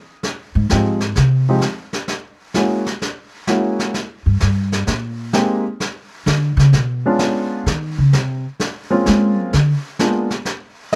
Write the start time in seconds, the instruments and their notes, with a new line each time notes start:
0.23 brush sweep, snare
0.55 upright bass G#2
0.69 upright bass G#2, grand piano F3 G#3 C4 D#4 G4, snare
1.00 snare
1.15 upright bass C3, brush sweep, snare
1.49 grand piano F3 G#3 C4 D#4 G4
1.61 snare
1.93 snare
2.08 brush sweep, snare
2.54 grand piano G#3 A#3 C#4 E4 F#4, snare
2.86 snare
3.02 brush sweep, snare
3.47 grand piano G#3 A#3 C#4 E4 F#4, snare
3.79 snare
3.94 brush sweep, snare
4.26 upright bass G2
4.40 upright bass G2, snare
4.72 snare
4.87 upright bass A#2, brush sweep, snare
5.33 grand piano G#3 A#3 C4 D#4 G4, snare
5.80 brush sweep, snare
6.26 upright bass D3, snare
6.57 upright bass C#3, snare
6.73 upright bass B2, brush sweep, snare
7.06 grand piano G#3 B3 C#4 D4 F4
7.19 snare
7.66 upright bass D#3, brush sweep, snare
7.98 upright bass C#3
8.13 upright bass C3, snare
8.60 brush sweep, snare
8.90 grand piano G#3 A#3 C4 C#4 F4
9.06 upright bass G#3, snare
9.37 upright bass F#3
9.53 upright bass D3, brush sweep, snare
9.99 grand piano G#3 A#3 B3 D4 F4, snare
10.30 snare
10.45 brush sweep, snare